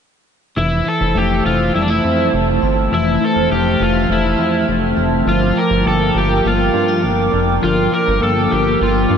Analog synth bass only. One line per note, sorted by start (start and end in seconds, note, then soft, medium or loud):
0.56 0.82 F1 loud
1.00 1.13 F1 medium
1.15 1.41 F1 medium
1.45 1.71 F1 medium
1.75 2.00 F1 medium
2.04 2.29 F2 loud
2.33 2.58 F1 loud
2.62 2.88 G1 medium
2.92 3.18 F1 medium
3.36 3.48 F1 medium
3.50 3.76 F1 loud
3.80 4.06 F1 medium
4.09 4.35 F1 loud
4.38 4.64 F2 medium
4.68 4.94 F1 loud
4.96 5.23 F1 medium
5.25 5.52 G1 loud
5.70 5.83 G1 loud
5.86 6.11 G1 medium
6.15 6.41 G1 medium
6.44 6.70 G1 loud
6.74 7.05 G2 loud
7.03 7.29 G1 loud
7.33 7.59 F1 medium
7.63 7.88 G1 loud
8.07 8.20 G1 medium
8.22 8.47 G1 loud
8.51 8.77 G1 medium
8.81 9.06 G1 medium
9.10 9.18 G2 medium